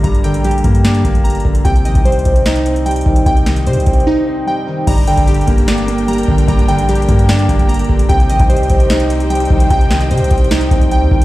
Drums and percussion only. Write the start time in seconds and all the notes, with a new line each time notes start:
0.04 kick, closed hi-hat
0.15 closed hi-hat
0.24 closed hi-hat
0.34 closed hi-hat
0.44 closed hi-hat
0.51 closed hi-hat
0.58 closed hi-hat
0.64 kick, closed hi-hat
0.75 closed hi-hat
0.85 snare, closed hi-hat
0.95 closed hi-hat
1.05 kick, closed hi-hat
1.15 kick, closed hi-hat
1.25 closed hi-hat
1.30 closed hi-hat
1.35 closed hi-hat
1.40 closed hi-hat
1.45 kick
1.55 closed hi-hat
1.65 kick, closed hi-hat
1.76 closed hi-hat
1.85 closed hi-hat
1.95 kick, closed hi-hat
2.05 closed hi-hat
2.12 closed hi-hat
2.19 closed hi-hat
2.25 kick, closed hi-hat
2.36 closed hi-hat
2.46 snare, closed hi-hat
2.56 closed hi-hat
2.66 closed hi-hat
2.76 closed hi-hat
2.86 closed hi-hat
2.91 closed hi-hat
2.96 closed hi-hat
3.01 closed hi-hat
3.06 kick
3.16 closed hi-hat
3.26 kick, closed hi-hat
3.37 closed hi-hat
3.46 snare, closed hi-hat
3.56 closed hi-hat
3.67 closed hi-hat
3.73 closed hi-hat
3.80 closed hi-hat
3.86 kick, closed hi-hat, open hi-hat
3.93 closed hi-hat
4.00 closed hi-hat
4.87 kick, closed hi-hat, crash
4.98 closed hi-hat
5.07 closed hi-hat
5.17 kick, closed hi-hat
5.28 closed hi-hat
5.34 closed hi-hat
5.41 closed hi-hat
5.47 kick, closed hi-hat
5.58 closed hi-hat
5.68 snare, closed hi-hat
5.78 closed hi-hat
5.88 closed hi-hat
5.98 closed hi-hat
6.08 closed hi-hat
6.13 closed hi-hat
6.18 closed hi-hat
6.23 closed hi-hat
6.28 kick
6.38 closed hi-hat
6.48 kick, closed hi-hat
6.59 closed hi-hat
6.69 closed hi-hat
6.78 closed hi-hat
6.89 closed hi-hat
6.95 closed hi-hat
7.02 closed hi-hat
7.09 kick, closed hi-hat
7.19 closed hi-hat
7.29 snare, closed hi-hat
7.39 closed hi-hat
7.49 kick, closed hi-hat
7.59 kick, closed hi-hat
7.69 closed hi-hat
7.74 closed hi-hat
7.79 closed hi-hat
7.84 closed hi-hat
7.89 kick
7.99 closed hi-hat
8.10 kick, closed hi-hat
8.20 closed hi-hat
8.30 closed hi-hat
8.39 kick, closed hi-hat
8.50 closed hi-hat
8.56 closed hi-hat
8.63 closed hi-hat
8.70 kick, closed hi-hat
8.80 closed hi-hat
8.90 snare, closed hi-hat
9.00 closed hi-hat
9.10 closed hi-hat
9.20 closed hi-hat
9.30 closed hi-hat
9.35 closed hi-hat
9.40 closed hi-hat
9.45 closed hi-hat
9.50 kick
9.60 closed hi-hat
9.70 kick, closed hi-hat
9.81 closed hi-hat
9.91 snare, closed hi-hat
10.01 closed hi-hat
10.11 closed hi-hat
10.18 closed hi-hat
10.24 closed hi-hat
10.31 kick, closed hi-hat, open hi-hat
10.38 closed hi-hat
10.44 closed hi-hat
10.51 snare, closed hi-hat
10.61 closed hi-hat
10.71 kick, closed hi-hat
10.81 kick, closed hi-hat
10.91 closed hi-hat
11.11 kick
11.22 closed hi-hat